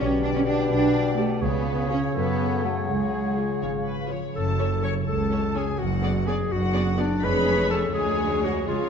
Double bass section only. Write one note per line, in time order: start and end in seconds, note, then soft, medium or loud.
0.00 0.56 B1 medium
0.70 1.27 B1 medium
1.43 2.00 C#2 medium
2.15 2.73 F#2 medium
2.89 3.47 C#2 medium
3.62 4.21 G#1 medium
4.36 4.96 F#1 medium
5.08 5.68 C#2 medium
5.80 6.39 F#1 medium
6.51 7.11 F#1 medium
7.22 7.91 F1 medium
7.95 8.68 D2 medium
8.68 8.89 C#2 medium